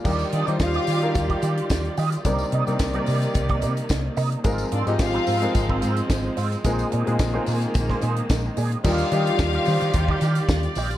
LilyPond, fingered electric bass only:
\new Staff \with { instrumentName = "Fingered electric bass" } { \clef bass \time 4/4 \key ees \major \tempo 4 = 109 ees,8 ees16 ees16 ees,8 ees8 ees,8 ees8 ees,8 ees8 | c,8 c16 c16 c,8 c8 c,8 c8 c,8 c8 | aes,,8 aes,16 aes,16 aes,,8 aes,8 aes,,8 aes,8 aes,,8 aes,8 | bes,,8 bes,16 bes,16 bes,,8 bes,8 bes,,8 bes,8 bes,,8 bes,8 |
ees,8 ees8 ees,8 ees16 ees16 ees,8 ees8 ees,8 bes,,8 | }